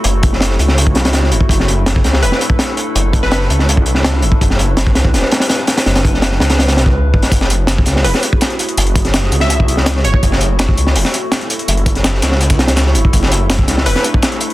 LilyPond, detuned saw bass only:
\new Staff \with { instrumentName = "Detuned saw bass" } { \clef bass \time 4/4 \key fis \minor \tempo 4 = 165 fis,,4. cis,4 b,,16 cis,8. fis,,16 r16 | fis,,4. cis,8 e,,16 r4. r16 | fis,,4. cis,4 b,,16 cis,8. fis,,16 r16 | fis,,4. cis,8 e,,16 r4. r16 |
fis,,4. cis,4 b,,16 cis,8. fis,,16 r16 | fis,,4. cis,8 e,,16 r4. r16 | fis,,4. cis,4 b,,16 cis,8. fis,,16 r16 | fis,,4. cis,8 e,,16 r4. r16 |
fis,,4. cis,4 b,,16 cis,8. fis,,16 r16 | fis,,4. cis,8 e,,16 r4. r16 | }